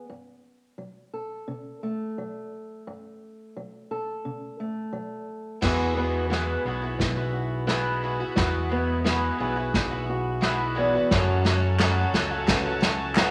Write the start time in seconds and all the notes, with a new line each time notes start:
0.10 F#2
0.78 F#3
1.14 A4
1.48 C#3
1.83 A3
2.18 F#3
2.87 F#2
3.57 F#3
3.91 A4
4.25 C#3
4.60 A3
4.93 F#3
5.61 E2 E3 G#3 B3 E4 F#4 G#4, kick, snare, crash
5.97 G#3 B3 E4 F#4
6.30 E3 G#3 B3 E4 F#4, snare
6.65 B1 G#3 B3 E4 F#4 G#4
6.82 B3 E4 F#4
6.99 B1 B2, kick, snare
7.16 B3 E4 F#4
7.33 F#4
7.67 E3 G#3 B3 E4 F#4 G#4, snare
8.03 G#3 B3 E4 F#4
8.20 B3 E4 F#4
8.35 E2 E3 G#3 B3 E4 F#4, kick, snare
8.69 G#3 B3 E4 F#4
9.04 E3 G#3 B3 E4 F#4, snare
9.38 B1 G#3 B3 E4 F#4 G#4
9.56 B3 E4 F#4
9.74 B1 B2, kick, snare
9.91 B3 E4 F#4
10.10 F#4
10.41 E3 G#3 B3 E4 F#4, snare
10.75 E2 G#3 B3 E4 F#4
10.94 B3 E4 F#4
11.11 F#1 F#2 C#3 F#3 A3 C#4 F#4 A4 C#5 A5, kick, snare
11.44 F#3 A3 C#4 F#4, snare, tambourine
11.78 F#2 C#3 F#3 A3 C#4 F#4 A4 D#5, snare, clap, tambourine
12.13 C#2 F#3 A3 C#4 F#4, snare, tambourine
12.31 F#3 A3 C#4 F#4
12.47 C#2 F#3 C#4 A4 B4, kick, snare, clap, tambourine
12.66 F#3 A3 C#4 F#4
12.81 snare, tambourine
13.15 F#2 C#3 F#3 A3 C#4 F#4 A4 B4, snare, clap, tambourine